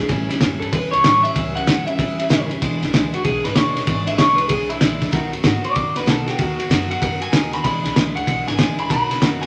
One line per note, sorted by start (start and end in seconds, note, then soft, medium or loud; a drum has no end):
0.00 0.08 E3 soft
0.08 0.25 A1 loud
0.08 0.29 A2 medium
0.08 0.30 E3 medium
0.08 0.30 G3 medium
0.08 0.29 C#4 loud
0.08 0.28 E4 loud
0.08 kick loud
0.08 snare soft
0.08 ride medium
0.29 0.39 E2 loud
0.29 0.41 G3 medium
0.29 0.41 C#4 medium
0.29 0.41 E4 medium
0.29 snare soft
0.29 ride medium
0.40 0.58 F#2 medium
0.40 0.61 A2 medium
0.40 0.61 E3 loud
0.40 0.62 G3 medium
0.40 0.61 C#4 medium
0.40 0.60 E4 medium
0.40 snare loud
0.40 ride medium
0.60 0.70 G2 medium
0.60 0.72 G3 soft
0.60 0.73 C#4 soft
0.60 0.72 E4 medium
0.60 0.72 A4 medium
0.60 ride medium
0.72 0.89 E2 medium
0.72 0.92 E3 medium
0.72 0.93 G3 medium
0.72 0.93 C#4 medium
0.72 0.91 E4 medium
0.72 0.92 B4 medium
0.72 kick loud
0.72 ride medium
0.91 1.02 C#2 medium
0.91 1.04 G3 soft
0.91 1.04 C#4 medium
0.91 1.03 E4 medium
0.91 1.22 C#5 medium
0.91 ride medium
1.04 1.29 A1 medium
1.04 1.24 A2 medium
1.04 1.24 E3 medium
1.04 1.25 G3 medium
1.04 1.24 C#4 medium
1.04 1.22 E4 medium
1.04 snare loud
1.04 ride loud
1.23 1.35 G3 soft
1.23 1.35 C#4 medium
1.23 1.35 E4 medium
1.23 1.54 E5 medium
1.23 ride medium
1.35 1.61 C#2 loud
1.35 1.55 A2 medium
1.35 1.55 E3 medium
1.35 1.56 G3 medium
1.35 1.56 C#4 medium
1.35 1.54 E4 medium
1.35 kick loud
1.35 ride medium
1.55 1.66 G3 soft
1.55 1.67 C#4 soft
1.55 1.66 E4 medium
1.55 1.86 F#5 loud
1.55 ride medium
1.66 1.92 E2 medium
1.66 1.87 A2 medium
1.66 1.87 E3 medium
1.66 1.87 G3 medium
1.66 1.86 C#4 medium
1.66 1.85 E4 medium
1.66 snare loud
1.66 ride medium
1.86 1.98 G3 soft
1.86 1.98 C#4 medium
1.86 1.98 E4 medium
1.86 2.48 E5 loud
1.86 ride medium
1.98 2.23 E2 medium
1.98 2.18 E3 medium
1.98 2.19 G3 medium
1.98 2.19 C#4 medium
1.98 2.17 E4 medium
1.98 kick loud
1.98 ride medium
2.18 2.29 G3 medium
2.18 2.29 C#4 medium
2.18 2.30 E4 medium
2.18 ride medium
2.29 2.55 F#1 medium
2.29 2.49 A2 medium
2.29 2.50 E3 loud
2.29 2.50 G3 loud
2.29 2.50 C#4 loud
2.29 2.48 E4 loud
2.29 snare loud
2.29 ride medium
2.49 2.62 G3 medium
2.49 2.62 C#4 medium
2.49 2.61 E4 medium
2.49 ride medium
2.62 2.78 E1 medium
2.62 2.82 E2 medium
2.62 2.82 B2 loud
2.62 2.82 E3 medium
2.62 2.82 G#3 loud
2.62 2.82 D4 loud
2.62 2.81 E4 loud
2.62 kick loud
2.62 ride medium
2.82 2.91 B1 loud
2.82 2.92 E3 medium
2.82 2.93 G#3 medium
2.82 2.93 D4 medium
2.82 2.93 E4 medium
2.82 snare soft
2.82 ride medium
2.93 3.09 C#2 medium
2.93 3.13 E2 medium
2.93 3.13 B2 medium
2.93 3.13 E3 loud
2.93 3.14 G#3 loud
2.93 3.13 D4 loud
2.93 3.12 E4 loud
2.93 snare loud
2.93 ride medium
3.13 3.22 D2 medium
3.13 3.23 E3 soft
3.13 3.24 G#3 soft
3.13 3.25 D4 medium
3.13 3.24 E4 medium
3.13 3.24 F#4 loud
3.13 ride medium
3.24 3.40 B1 loud
3.24 3.44 E3 medium
3.24 3.45 G#3 medium
3.24 3.45 D4 medium
3.24 3.43 E4 medium
3.24 3.44 G#4 loud
3.24 kick loud
3.24 ride medium
3.44 3.53 G#1 medium
3.44 3.56 E3 medium
3.44 3.56 G#3 medium
3.44 3.56 D4 medium
3.44 3.56 E4 medium
3.44 3.55 B4 medium
3.44 snare soft
3.44 ride medium
3.55 3.81 E1 loud
3.55 3.76 E2 medium
3.55 3.76 B2 medium
3.55 3.76 E3 medium
3.55 3.76 G#3 medium
3.55 3.75 D4 medium
3.55 3.75 E4 medium
3.55 4.05 C#5 loud
3.55 snare loud
3.55 ride loud
3.76 3.86 E3 medium
3.76 3.87 G#3 medium
3.76 3.87 D4 medium
3.76 3.87 E4 medium
3.76 snare soft
3.76 ride medium
3.87 4.12 G#1 loud
3.87 4.07 E2 medium
3.87 4.07 B2 medium
3.87 4.07 E3 medium
3.87 4.07 G#3 medium
3.87 4.07 D4 medium
3.87 4.05 E4 medium
3.87 kick loud
3.87 ride medium
4.07 4.17 E3 soft
4.07 4.18 G#3 soft
4.07 4.19 D4 medium
4.07 4.18 E4 medium
4.07 4.18 E5 medium
4.07 ride medium
4.18 4.43 B1 medium
4.18 4.38 E2 medium
4.18 4.39 B2 medium
4.18 4.39 E3 medium
4.18 4.39 G#3 medium
4.18 4.38 D4 medium
4.18 4.37 E4 medium
4.18 4.38 C#5 loud
4.18 snare loud
4.18 ride medium
4.36 4.50 D4 medium
4.36 4.50 E4 medium
4.36 4.48 B4 medium
4.36 ride medium
4.40 4.49 E3 soft
4.40 4.50 G#3 medium
4.48 4.75 B1 medium
4.48 4.70 E3 medium
4.48 4.71 G#3 medium
4.48 4.70 D4 medium
4.48 4.69 G#4 medium
4.48 kick loud
4.48 ride loud
4.53 4.69 E4 medium
4.69 4.81 E3 soft
4.69 4.81 G#3 medium
4.69 4.81 D4 medium
4.69 5.11 E4 loud
4.69 4.81 E4 medium
4.69 ride medium
4.81 5.06 A#1 medium
4.81 5.01 E2 medium
4.81 5.01 B2 medium
4.81 5.02 E3 loud
4.81 5.01 G#3 medium
4.81 5.01 D4 medium
4.81 4.99 E4 medium
4.81 snare loud
4.81 ride medium
5.00 5.11 E3 medium
5.00 5.12 G#3 medium
5.00 5.12 D4 medium
5.00 5.12 E4 medium
5.00 kick medium
5.00 snare soft
5.00 ride medium
5.11 5.29 B1 medium
5.11 5.32 B2 medium
5.11 5.33 D#3 loud
5.11 5.33 A3 medium
5.11 5.32 B3 loud
5.11 5.31 F#4 loud
5.11 kick loud
5.11 snare soft
5.11 ride medium
5.32 5.42 F#2 medium
5.32 5.43 A3 medium
5.32 5.43 B3 medium
5.32 5.44 F#4 medium
5.32 ride medium
5.43 5.60 G#2 loud
5.43 5.64 B2 medium
5.43 5.64 D#3 medium
5.43 5.65 A3 medium
5.43 5.64 B3 loud
5.43 5.62 F#4 loud
5.43 snare loud
5.43 ride medium
5.64 5.73 A2 medium
5.64 5.74 A3 medium
5.64 5.75 B3 soft
5.64 5.75 F#4 medium
5.64 5.95 D5 medium
5.64 ride medium
5.74 5.92 F#2 medium
5.74 5.95 D#3 medium
5.74 5.96 A3 medium
5.74 5.95 B3 medium
5.74 5.93 F#4 medium
5.74 kick loud
5.74 ride medium
5.94 6.05 D#2 medium
5.94 6.06 A3 soft
5.94 6.06 B3 medium
5.94 6.06 F#4 soft
5.94 6.07 B4 loud
5.94 snare soft
5.94 ride medium
6.06 6.32 B1 loud
6.06 6.27 B2 medium
6.06 6.27 D#3 medium
6.06 6.27 A3 medium
6.06 6.26 B3 medium
6.06 6.25 F#4 medium
6.06 6.29 A4 medium
6.06 snare loud
6.06 ride medium
6.26 6.38 A3 medium
6.26 6.39 B3 medium
6.26 6.38 F#4 medium
6.26 6.40 G4 loud
6.26 snare soft
6.26 ride medium
6.38 6.64 D#2 medium
6.38 6.59 B2 medium
6.38 6.59 D#3 medium
6.38 6.59 A3 medium
6.38 6.59 B3 medium
6.38 6.70 F#4 medium
6.38 6.58 F#4 medium
6.38 kick loud
6.38 ride medium
6.59 6.69 A3 soft
6.59 6.69 B3 medium
6.59 6.70 F#4 medium
6.59 ride medium
6.69 6.95 F#2 loud
6.69 6.90 B2 medium
6.69 6.90 D#3 medium
6.69 6.90 A3 medium
6.69 6.90 B3 medium
6.69 6.88 F#4 medium
6.69 snare loud
6.69 ride medium
6.90 7.00 A3 soft
6.90 7.01 B3 soft
6.90 7.01 F#4 medium
6.90 7.21 F#5 loud
6.90 ride medium
7.00 7.27 F#2 medium
7.00 7.21 D#3 medium
7.00 7.21 A3 medium
7.00 7.20 B3 medium
7.00 7.19 F#4 medium
7.00 kick loud
7.00 ride loud
7.20 7.32 A3 medium
7.20 7.32 B3 medium
7.20 7.32 F#4 medium
7.20 7.52 G#5 loud
7.20 ride medium
7.32 7.58 D#2 loud
7.32 7.53 B2 medium
7.32 7.53 D#3 medium
7.32 7.53 A3 medium
7.32 7.52 B3 medium
7.32 7.50 F#4 medium
7.32 snare loud
7.32 ride medium
7.52 7.64 A3 soft
7.52 7.64 B3 medium
7.52 7.64 F#4 medium
7.52 7.63 B5 medium
7.52 snare soft
7.52 ride medium
7.64 7.81 E1 loud
7.64 7.84 E2 medium
7.64 7.84 B2 medium
7.64 7.85 E3 medium
7.64 7.84 G#3 medium
7.64 7.83 D4 medium
7.64 7.82 E4 medium
7.64 7.95 B5 loud
7.64 kick loud
7.64 snare soft
7.64 ride medium
7.83 7.93 B1 medium
7.83 7.95 E3 soft
7.83 7.95 G#3 soft
7.83 7.96 D4 medium
7.83 7.95 E4 medium
7.83 snare soft
7.83 ride medium
7.95 8.11 C#2 medium
7.95 8.16 E2 medium
7.95 8.16 B2 medium
7.95 8.16 E3 medium
7.95 8.16 G#3 medium
7.95 8.15 D4 medium
7.95 8.14 E4 medium
7.95 snare loud
7.95 ride medium
8.15 8.24 D2 medium
8.15 8.25 E3 soft
8.15 8.26 G#3 soft
8.15 8.27 D4 medium
8.15 8.27 E4 medium
8.15 8.46 F#5 loud
8.15 ride medium
8.26 8.43 B1 loud
8.26 8.47 E3 medium
8.26 8.47 G#3 medium
8.26 8.46 D4 medium
8.26 8.45 E4 medium
8.26 kick loud
8.26 ride medium
8.47 8.56 G#1 medium
8.47 8.57 E3 soft
8.47 8.57 G#3 medium
8.47 8.58 D4 medium
8.47 8.58 E4 medium
8.47 8.78 G#5 medium
8.47 snare soft
8.47 ride medium
8.57 8.83 A#1 medium
8.57 8.78 E2 medium
8.57 8.78 B2 medium
8.57 8.78 E3 medium
8.57 8.78 G#3 loud
8.57 8.77 D4 loud
8.57 8.76 E4 loud
8.57 snare loud
8.57 ride medium
8.77 8.89 E3 medium
8.77 8.90 G#3 medium
8.77 8.90 D4 medium
8.77 8.89 E4 medium
8.77 8.90 B5 loud
8.77 ride medium
8.89 9.15 B1 loud
8.89 9.10 B2 medium
8.89 9.10 D#3 medium
8.89 9.10 A3 medium
8.89 9.09 B3 medium
8.89 9.07 F#4 medium
8.89 9.21 B5 loud
8.89 kick loud
8.89 snare soft
8.89 ride medium
9.08 9.20 A3 soft
9.08 9.21 B3 medium
9.08 9.20 F#4 medium
9.08 snare soft
9.08 ride medium
9.20 9.46 F#2 medium
9.20 9.41 B2 medium
9.20 9.41 D#3 medium
9.20 9.42 A3 medium
9.20 9.42 B3 medium
9.20 9.40 F#4 medium
9.20 snare loud
9.20 ride medium
9.42 9.46 B3 soft
9.42 9.46 F#4 medium
9.42 9.46 G#5 loud
9.42 ride medium